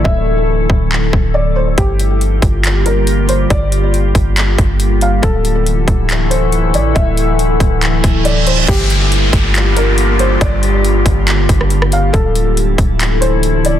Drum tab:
CC |----------------|----------------|----------------|----------------|
HH |----------------|x-x-x-x-x-x-x-x-|x-x-x-x-x-x-x-x-|x-x-x-x-x-x-x-x-|
CP |--------x-------|--------x-------|--------x-------|--------x-------|
SD |----------------|----------------|----------------|----------------|
BD |o-----o---o-----|o-----o---------|o-----o---o-----|o-----o---------|

CC |----------------|x---------------|----------------|----------------|
HH |x-x-x-x-x-x-x-x-|x-x-x-x-x-x-x-x-|x-x-x-x-x-x-x-x-|x-x-x-x-x-x-x-x-|
CP |--------x-------|--------x-------|--------x-------|--------x-------|
SD |----------------|----------------|-----------r-r--|----------------|
BD |o-----o---o-----|o-----o---------|o-----o---o-----|o-----o---------|